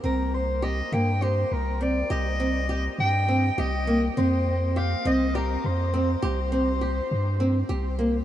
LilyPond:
<<
  \new Staff \with { instrumentName = "Soprano saxophone" } { \time 7/8 \key c \minor \tempo 4 = 102 bes'8 c''8 ees''8 g''8 c''8 bes'8 d''8 | ees''4. g''4 ees''8. r16 | c''4 f''8 ees''8 bes'8 c''4 | c''2~ c''8 r4 | }
  \new Staff \with { instrumentName = "Nylon-string guitar" } { \time 7/8 \key c \minor c'4 g'8 bes8 g'4 c'8 | g'8 c'8 g'4 c'8 g'8 bes8 | c'4 g'8 c'8 g'4 c'8 | g'8 c'8 g'4 c'8 g'8 bes8 | }
  \new Staff \with { instrumentName = "Sub bass" } { \clef bass \time 7/8 \key c \minor c,4. g,4 c,4 | c,4. g,4 c,4 | f,4. c,4 f,4 | c,4. g,4 c,4 | }
>>